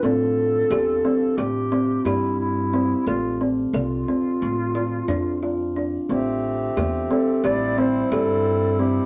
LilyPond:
<<
  \new Staff \with { instrumentName = "Clarinet" } { \time 9/8 \key a \minor \tempo 4. = 59 a'2 g'4 e'8 e'4 | f'8 r8 f'2. r8 | r4. a'8 d''8 c''8 a'4 g'8 | }
  \new Staff \with { instrumentName = "Kalimba" } { \time 9/8 \key a \minor c'4 g'8 c'8 g'8 c'8 g'4 c'8 | a'8 c'8 a'8 c'4 f'8 d'8 f'8 d'8 | c'4 g'8 c'8 g'8 c'8 g'4 c'8 | }
  \new Staff \with { instrumentName = "Harmonium" } { \time 9/8 \key a \minor << { r1 r8 | r1 r8 | <a g'>2 <g e'>2~ <g e'>8 | } \\ { r1 r8 | r1 r8 | c'1~ c'8 | } >> }
  \new Staff \with { instrumentName = "Upright bass" } { \clef bass \time 9/8 \key a \minor a,,4 e,8 r8 a,,4 g,4. | a,,4 c,8 r8 a,,4 f,4. | a,,4 e,8 r8 a,,4 g,4. | }
>>